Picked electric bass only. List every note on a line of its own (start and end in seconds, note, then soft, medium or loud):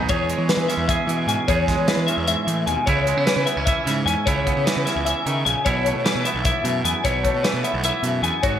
0.10 0.34 E2 medium
0.38 0.47 E3 medium
0.57 0.66 E3 medium
0.77 0.94 E2 medium
1.07 1.24 E3 medium
1.27 1.36 G#2 medium
1.48 1.73 E2 loud
1.78 1.86 E3 medium
1.97 2.06 E3 medium
2.17 2.34 E2 medium
2.47 2.64 E3 medium
2.67 2.75 D#2 medium
2.87 3.12 C#2 medium
3.17 3.25 C#3 medium
3.36 3.45 C#3 medium
3.57 3.73 C#2 medium
3.86 4.03 C#3 medium
4.06 4.14 E2 medium
4.27 4.52 C#2 loud
4.57 4.65 C#3 medium
4.77 4.85 C#3 medium
4.96 5.13 C#2 medium
5.26 5.43 C#3 medium
5.46 5.54 A#1 medium
5.66 5.91 B1 loud
5.96 6.04 B2 medium
6.15 6.24 B2 medium
6.35 6.51 B1 medium
6.64 6.81 B2 medium
6.84 6.93 E2 medium
7.05 7.29 B1 loud
7.34 7.42 B2 medium
7.54 7.62 B2 medium
7.74 7.91 B1 medium
8.03 8.20 B2 medium
8.22 8.31 E2 medium
8.43 8.59 G#1 medium